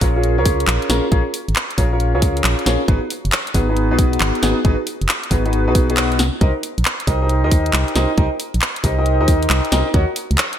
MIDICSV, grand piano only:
0, 0, Header, 1, 2, 480
1, 0, Start_track
1, 0, Tempo, 441176
1, 1216, Time_signature, 4, 2, 24, 8
1, 11521, End_track
2, 0, Start_track
2, 0, Title_t, "Grand piano"
2, 0, Program_c, 0, 0
2, 15, Note_on_c, 0, 61, 75
2, 15, Note_on_c, 0, 65, 69
2, 15, Note_on_c, 0, 68, 70
2, 15, Note_on_c, 0, 70, 69
2, 15, Note_on_c, 0, 73, 84
2, 137, Note_off_c, 0, 61, 0
2, 137, Note_off_c, 0, 65, 0
2, 137, Note_off_c, 0, 68, 0
2, 137, Note_off_c, 0, 70, 0
2, 137, Note_off_c, 0, 73, 0
2, 176, Note_on_c, 0, 61, 73
2, 176, Note_on_c, 0, 65, 67
2, 176, Note_on_c, 0, 68, 68
2, 176, Note_on_c, 0, 70, 67
2, 176, Note_on_c, 0, 73, 81
2, 377, Note_off_c, 0, 65, 0
2, 377, Note_off_c, 0, 68, 0
2, 378, Note_off_c, 0, 61, 0
2, 378, Note_off_c, 0, 70, 0
2, 378, Note_off_c, 0, 73, 0
2, 415, Note_on_c, 0, 61, 85
2, 415, Note_on_c, 0, 65, 76
2, 415, Note_on_c, 0, 68, 75
2, 415, Note_on_c, 0, 70, 78
2, 415, Note_on_c, 0, 73, 92
2, 956, Note_off_c, 0, 61, 0
2, 956, Note_off_c, 0, 65, 0
2, 956, Note_off_c, 0, 70, 0
2, 956, Note_off_c, 0, 73, 0
2, 957, Note_off_c, 0, 68, 0
2, 976, Note_on_c, 0, 61, 82
2, 976, Note_on_c, 0, 65, 75
2, 976, Note_on_c, 0, 68, 75
2, 976, Note_on_c, 0, 70, 75
2, 976, Note_on_c, 0, 73, 92
2, 1125, Note_off_c, 0, 61, 0
2, 1125, Note_off_c, 0, 65, 0
2, 1125, Note_off_c, 0, 68, 0
2, 1125, Note_off_c, 0, 70, 0
2, 1125, Note_off_c, 0, 73, 0
2, 1216, Note_on_c, 0, 61, 87
2, 1216, Note_on_c, 0, 65, 78
2, 1216, Note_on_c, 0, 68, 79
2, 1216, Note_on_c, 0, 70, 79
2, 1216, Note_on_c, 0, 73, 95
2, 1309, Note_off_c, 0, 61, 0
2, 1309, Note_off_c, 0, 68, 0
2, 1309, Note_off_c, 0, 70, 0
2, 1310, Note_off_c, 0, 65, 0
2, 1310, Note_off_c, 0, 73, 0
2, 1936, Note_on_c, 0, 61, 78
2, 1936, Note_on_c, 0, 65, 69
2, 1936, Note_on_c, 0, 68, 70
2, 1936, Note_on_c, 0, 70, 72
2, 1936, Note_on_c, 0, 73, 85
2, 2057, Note_off_c, 0, 65, 0
2, 2057, Note_off_c, 0, 73, 0
2, 2058, Note_off_c, 0, 61, 0
2, 2058, Note_off_c, 0, 68, 0
2, 2058, Note_off_c, 0, 70, 0
2, 2096, Note_on_c, 0, 61, 73
2, 2096, Note_on_c, 0, 65, 67
2, 2096, Note_on_c, 0, 68, 69
2, 2096, Note_on_c, 0, 70, 67
2, 2096, Note_on_c, 0, 73, 83
2, 2297, Note_off_c, 0, 61, 0
2, 2297, Note_off_c, 0, 65, 0
2, 2297, Note_off_c, 0, 68, 0
2, 2298, Note_off_c, 0, 70, 0
2, 2298, Note_off_c, 0, 73, 0
2, 2335, Note_on_c, 0, 61, 88
2, 2335, Note_on_c, 0, 68, 77
2, 2335, Note_on_c, 0, 70, 78
2, 2335, Note_on_c, 0, 73, 93
2, 2336, Note_on_c, 0, 65, 78
2, 2876, Note_off_c, 0, 61, 0
2, 2876, Note_off_c, 0, 68, 0
2, 2877, Note_off_c, 0, 65, 0
2, 2877, Note_off_c, 0, 70, 0
2, 2877, Note_off_c, 0, 73, 0
2, 2896, Note_on_c, 0, 61, 84
2, 2896, Note_on_c, 0, 65, 76
2, 2896, Note_on_c, 0, 68, 77
2, 2896, Note_on_c, 0, 70, 74
2, 2896, Note_on_c, 0, 73, 91
2, 3046, Note_off_c, 0, 61, 0
2, 3046, Note_off_c, 0, 65, 0
2, 3046, Note_off_c, 0, 68, 0
2, 3046, Note_off_c, 0, 70, 0
2, 3046, Note_off_c, 0, 73, 0
2, 3136, Note_on_c, 0, 59, 87
2, 3136, Note_on_c, 0, 63, 80
2, 3136, Note_on_c, 0, 66, 79
2, 3136, Note_on_c, 0, 68, 79
2, 3136, Note_on_c, 0, 71, 97
2, 3229, Note_off_c, 0, 68, 0
2, 3229, Note_off_c, 0, 71, 0
2, 3230, Note_off_c, 0, 59, 0
2, 3230, Note_off_c, 0, 63, 0
2, 3230, Note_off_c, 0, 66, 0
2, 3856, Note_on_c, 0, 59, 76
2, 3856, Note_on_c, 0, 63, 73
2, 3856, Note_on_c, 0, 68, 70
2, 3857, Note_on_c, 0, 66, 71
2, 3857, Note_on_c, 0, 71, 86
2, 3978, Note_off_c, 0, 59, 0
2, 3978, Note_off_c, 0, 63, 0
2, 3978, Note_off_c, 0, 66, 0
2, 3978, Note_off_c, 0, 68, 0
2, 3978, Note_off_c, 0, 71, 0
2, 4015, Note_on_c, 0, 59, 75
2, 4016, Note_on_c, 0, 63, 70
2, 4016, Note_on_c, 0, 66, 69
2, 4016, Note_on_c, 0, 68, 68
2, 4016, Note_on_c, 0, 71, 83
2, 4217, Note_off_c, 0, 59, 0
2, 4217, Note_off_c, 0, 63, 0
2, 4217, Note_off_c, 0, 66, 0
2, 4217, Note_off_c, 0, 68, 0
2, 4217, Note_off_c, 0, 71, 0
2, 4255, Note_on_c, 0, 63, 79
2, 4256, Note_on_c, 0, 59, 87
2, 4256, Note_on_c, 0, 66, 79
2, 4256, Note_on_c, 0, 68, 78
2, 4256, Note_on_c, 0, 71, 97
2, 4797, Note_off_c, 0, 59, 0
2, 4797, Note_off_c, 0, 63, 0
2, 4797, Note_off_c, 0, 66, 0
2, 4797, Note_off_c, 0, 68, 0
2, 4797, Note_off_c, 0, 71, 0
2, 4815, Note_on_c, 0, 59, 82
2, 4815, Note_on_c, 0, 63, 74
2, 4815, Note_on_c, 0, 66, 78
2, 4815, Note_on_c, 0, 68, 78
2, 4815, Note_on_c, 0, 71, 93
2, 4965, Note_off_c, 0, 59, 0
2, 4965, Note_off_c, 0, 63, 0
2, 4965, Note_off_c, 0, 66, 0
2, 4965, Note_off_c, 0, 68, 0
2, 4965, Note_off_c, 0, 71, 0
2, 5055, Note_on_c, 0, 63, 80
2, 5055, Note_on_c, 0, 66, 81
2, 5055, Note_on_c, 0, 68, 80
2, 5055, Note_on_c, 0, 71, 97
2, 5056, Note_on_c, 0, 59, 86
2, 5149, Note_off_c, 0, 59, 0
2, 5149, Note_off_c, 0, 63, 0
2, 5149, Note_off_c, 0, 66, 0
2, 5149, Note_off_c, 0, 68, 0
2, 5149, Note_off_c, 0, 71, 0
2, 5776, Note_on_c, 0, 59, 77
2, 5776, Note_on_c, 0, 63, 71
2, 5776, Note_on_c, 0, 66, 70
2, 5776, Note_on_c, 0, 68, 71
2, 5776, Note_on_c, 0, 71, 83
2, 5897, Note_off_c, 0, 59, 0
2, 5897, Note_off_c, 0, 63, 0
2, 5897, Note_off_c, 0, 66, 0
2, 5897, Note_off_c, 0, 68, 0
2, 5897, Note_off_c, 0, 71, 0
2, 5935, Note_on_c, 0, 59, 74
2, 5935, Note_on_c, 0, 63, 69
2, 5935, Note_on_c, 0, 66, 68
2, 5935, Note_on_c, 0, 68, 68
2, 5935, Note_on_c, 0, 71, 83
2, 6137, Note_off_c, 0, 59, 0
2, 6137, Note_off_c, 0, 63, 0
2, 6137, Note_off_c, 0, 66, 0
2, 6137, Note_off_c, 0, 68, 0
2, 6137, Note_off_c, 0, 71, 0
2, 6175, Note_on_c, 0, 59, 84
2, 6175, Note_on_c, 0, 63, 79
2, 6175, Note_on_c, 0, 66, 77
2, 6175, Note_on_c, 0, 68, 78
2, 6175, Note_on_c, 0, 71, 93
2, 6384, Note_off_c, 0, 59, 0
2, 6384, Note_off_c, 0, 63, 0
2, 6384, Note_off_c, 0, 66, 0
2, 6384, Note_off_c, 0, 68, 0
2, 6384, Note_off_c, 0, 71, 0
2, 6416, Note_on_c, 0, 59, 81
2, 6416, Note_on_c, 0, 63, 76
2, 6416, Note_on_c, 0, 66, 74
2, 6416, Note_on_c, 0, 68, 73
2, 6416, Note_on_c, 0, 71, 89
2, 6726, Note_off_c, 0, 59, 0
2, 6726, Note_off_c, 0, 63, 0
2, 6726, Note_off_c, 0, 66, 0
2, 6726, Note_off_c, 0, 71, 0
2, 6727, Note_off_c, 0, 68, 0
2, 6975, Note_on_c, 0, 75, 93
2, 6976, Note_on_c, 0, 63, 86
2, 6976, Note_on_c, 0, 67, 77
2, 6976, Note_on_c, 0, 70, 79
2, 6976, Note_on_c, 0, 72, 77
2, 7069, Note_off_c, 0, 63, 0
2, 7069, Note_off_c, 0, 67, 0
2, 7069, Note_off_c, 0, 70, 0
2, 7069, Note_off_c, 0, 72, 0
2, 7069, Note_off_c, 0, 75, 0
2, 7695, Note_on_c, 0, 75, 86
2, 7696, Note_on_c, 0, 63, 75
2, 7696, Note_on_c, 0, 67, 72
2, 7696, Note_on_c, 0, 70, 71
2, 7696, Note_on_c, 0, 72, 70
2, 7817, Note_off_c, 0, 63, 0
2, 7817, Note_off_c, 0, 67, 0
2, 7817, Note_off_c, 0, 70, 0
2, 7817, Note_off_c, 0, 72, 0
2, 7817, Note_off_c, 0, 75, 0
2, 7856, Note_on_c, 0, 63, 76
2, 7856, Note_on_c, 0, 67, 66
2, 7856, Note_on_c, 0, 70, 67
2, 7856, Note_on_c, 0, 72, 69
2, 7856, Note_on_c, 0, 75, 82
2, 8058, Note_off_c, 0, 63, 0
2, 8058, Note_off_c, 0, 67, 0
2, 8058, Note_off_c, 0, 70, 0
2, 8058, Note_off_c, 0, 72, 0
2, 8058, Note_off_c, 0, 75, 0
2, 8096, Note_on_c, 0, 63, 86
2, 8096, Note_on_c, 0, 67, 79
2, 8096, Note_on_c, 0, 72, 76
2, 8096, Note_on_c, 0, 75, 95
2, 8097, Note_on_c, 0, 70, 77
2, 8637, Note_off_c, 0, 63, 0
2, 8637, Note_off_c, 0, 67, 0
2, 8637, Note_off_c, 0, 70, 0
2, 8637, Note_off_c, 0, 72, 0
2, 8637, Note_off_c, 0, 75, 0
2, 8656, Note_on_c, 0, 63, 83
2, 8656, Note_on_c, 0, 67, 77
2, 8656, Note_on_c, 0, 70, 77
2, 8656, Note_on_c, 0, 72, 78
2, 8656, Note_on_c, 0, 75, 95
2, 8806, Note_off_c, 0, 63, 0
2, 8806, Note_off_c, 0, 67, 0
2, 8806, Note_off_c, 0, 70, 0
2, 8806, Note_off_c, 0, 72, 0
2, 8806, Note_off_c, 0, 75, 0
2, 8896, Note_on_c, 0, 63, 86
2, 8896, Note_on_c, 0, 67, 79
2, 8896, Note_on_c, 0, 70, 80
2, 8896, Note_on_c, 0, 75, 97
2, 8897, Note_on_c, 0, 72, 80
2, 8990, Note_off_c, 0, 63, 0
2, 8990, Note_off_c, 0, 67, 0
2, 8990, Note_off_c, 0, 70, 0
2, 8990, Note_off_c, 0, 72, 0
2, 8990, Note_off_c, 0, 75, 0
2, 9616, Note_on_c, 0, 63, 76
2, 9616, Note_on_c, 0, 67, 70
2, 9616, Note_on_c, 0, 70, 70
2, 9616, Note_on_c, 0, 72, 72
2, 9616, Note_on_c, 0, 75, 85
2, 9737, Note_off_c, 0, 70, 0
2, 9737, Note_off_c, 0, 72, 0
2, 9738, Note_off_c, 0, 63, 0
2, 9738, Note_off_c, 0, 67, 0
2, 9738, Note_off_c, 0, 75, 0
2, 9775, Note_on_c, 0, 67, 71
2, 9776, Note_on_c, 0, 63, 75
2, 9776, Note_on_c, 0, 70, 70
2, 9776, Note_on_c, 0, 72, 69
2, 9776, Note_on_c, 0, 75, 85
2, 9977, Note_off_c, 0, 63, 0
2, 9977, Note_off_c, 0, 67, 0
2, 9977, Note_off_c, 0, 70, 0
2, 9977, Note_off_c, 0, 72, 0
2, 9977, Note_off_c, 0, 75, 0
2, 10015, Note_on_c, 0, 63, 88
2, 10015, Note_on_c, 0, 67, 78
2, 10015, Note_on_c, 0, 70, 78
2, 10015, Note_on_c, 0, 72, 77
2, 10015, Note_on_c, 0, 75, 94
2, 10556, Note_off_c, 0, 72, 0
2, 10556, Note_off_c, 0, 75, 0
2, 10557, Note_off_c, 0, 63, 0
2, 10557, Note_off_c, 0, 67, 0
2, 10557, Note_off_c, 0, 70, 0
2, 10575, Note_on_c, 0, 63, 85
2, 10575, Note_on_c, 0, 67, 77
2, 10575, Note_on_c, 0, 72, 77
2, 10575, Note_on_c, 0, 75, 94
2, 10576, Note_on_c, 0, 70, 78
2, 10725, Note_off_c, 0, 63, 0
2, 10725, Note_off_c, 0, 67, 0
2, 10725, Note_off_c, 0, 70, 0
2, 10725, Note_off_c, 0, 72, 0
2, 10725, Note_off_c, 0, 75, 0
2, 10815, Note_on_c, 0, 66, 91
2, 10815, Note_on_c, 0, 70, 81
2, 10815, Note_on_c, 0, 73, 81
2, 10816, Note_on_c, 0, 75, 80
2, 10816, Note_on_c, 0, 78, 94
2, 10909, Note_off_c, 0, 66, 0
2, 10909, Note_off_c, 0, 70, 0
2, 10909, Note_off_c, 0, 73, 0
2, 10909, Note_off_c, 0, 75, 0
2, 10909, Note_off_c, 0, 78, 0
2, 11521, End_track
0, 0, End_of_file